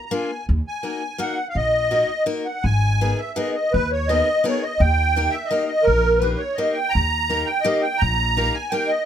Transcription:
0.06 A#5
0.11 A#3 D4 F4 A#4 G#5
0.49 D#2
0.67 G#5
0.83 A#3 D#4 F#4 A#4
1.18 A#3 D#4 F#4 A#4 F#5
1.49 F5
1.55 A#1 D#5
1.91 A#3 D#4 F#4 A#4
2.26 A#3 D#4 F#4 A#4
2.45 F#5
2.63 G#1 G#5
3.01 B3 D#4 G#4 A#4
3.18 E5
3.36 B3 D#4 G#4 A#4 D#5
3.54 D#5
3.72 D#2 B4
3.92 C#5
4.08 B3 D#4 G#4 A#4 D#5
4.44 B3 D#4 G#4 A#4 C#5
4.63 D#5
4.80 D#2 G5
5.16 A#3 D#4 G4 A#4
5.30 E5
5.45 D#5
5.51 A#3 D#4 G4 A#4
5.66 D#5
5.83 A#4
5.87 A#1
6.18 A#3 B4
6.22 D#4 G4 A#4
6.37 C#5
6.55 A#3 D#4 A#4 D#5
6.59 G4
6.72 G5
6.89 A#5
6.95 D#2
7.29 A#3 D#4 G4 A#4
7.46 G5
7.61 D#4 G4 D#5
7.65 A#3 A#4
7.82 G5
7.98 A#1 A#5
8.37 A#3 D#4 G4 A#4
8.54 G#5
8.71 A#3 D#4 G4 A#4 G5
8.88 D#5

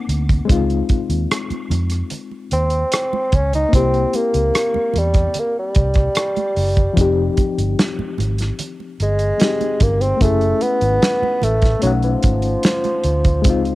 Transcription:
Already playing: A#3 C4 D#4 F#5
0.09 D2, closed hi-hat
0.29 kick, closed hi-hat, low conga
0.45 G#3 C4
0.49 C#2 D#4 F4, kick, closed hi-hat
0.70 closed hi-hat, muted conga
0.89 kick, closed hi-hat, high conga
1.10 D#2, closed hi-hat
1.31 cross-stick, closed hi-hat
1.50 muted fingered electric bass stroke, closed hi-hat, muted conga, high conga
1.70 F2, closed hi-hat, high conga, low conga
1.90 cross-stick, closed hi-hat
2.10 closed hi-hat, low conga
2.31 muted conga
2.51 D#2 C4, closed hi-hat
2.70 closed hi-hat
2.92 cross-stick, closed hi-hat, muted conga
3.13 muted conga, high conga
3.32 C#2 C#4, kick, closed hi-hat
3.53 D#4, closed hi-hat, low conga
3.69 A#3 C4
3.73 C2 C4 E4 G4, kick, closed hi-hat, muted conga
3.94 closed hi-hat
4.13 A#3, closed hi-hat, high conga
4.34 C#2, closed hi-hat
4.54 cross-stick, closed hi-hat, muted conga
4.74 muted fingered electric bass stroke, muted conga, high conga
4.94 E2, closed hi-hat, high conga, low conga
4.98 G3
5.14 kick, cross-stick, closed hi-hat
5.34 closed hi-hat, muted conga, low conga
5.39 A#3
5.59 G3
5.75 C2, kick, closed hi-hat
5.94 kick, cross-stick, closed hi-hat
6.15 cross-stick, closed hi-hat
6.36 closed hi-hat, muted conga, high conga
6.56 F#1, open hi-hat
6.77 kick, closed hi-hat, low conga
6.93 F1 F3 C4, kick, closed hi-hat
6.99 D#4 G4, muted conga
7.37 kick, closed hi-hat, high conga
7.58 G1, closed hi-hat
7.79 snare, closed hi-hat
7.99 muted fingered electric bass stroke, muted conga, high conga
8.18 G#1, closed hi-hat, high conga, low conga
8.38 snare, closed hi-hat
8.59 closed hi-hat, muted conga, low conga
8.80 muted conga
9.00 G1 G#3, closed hi-hat
9.19 closed hi-hat
9.38 G#3 C4 D#4 G4, snare, closed hi-hat
9.61 closed hi-hat, muted conga, high conga
9.80 G1 A#3, kick, closed hi-hat
10.01 C4, closed hi-hat, low conga
10.17 F#1 A3 C#4, closed hi-hat
10.21 A3 E4 G#4, kick
10.41 closed hi-hat
10.61 B3, closed hi-hat, high conga
10.81 G#1, closed hi-hat
11.02 snare, closed hi-hat
11.22 muted fingered electric bass stroke, muted conga, high conga
11.42 A1 A3, closed hi-hat, high conga, low conga
11.62 kick, snare, closed hi-hat
11.80 B1 F#3 A3 C#4, closed hi-hat, muted conga, low conga
11.84 D#4 F#5
12.02 F3, closed hi-hat
12.23 G#1, kick, closed hi-hat
12.42 closed hi-hat
12.63 snare, closed hi-hat
12.84 closed hi-hat, muted conga, high conga
13.04 D2, closed hi-hat
13.24 kick, closed hi-hat, low conga
13.42 C#2 G#3 C4, kick, closed hi-hat
13.47 D#4 F4
13.65 closed hi-hat

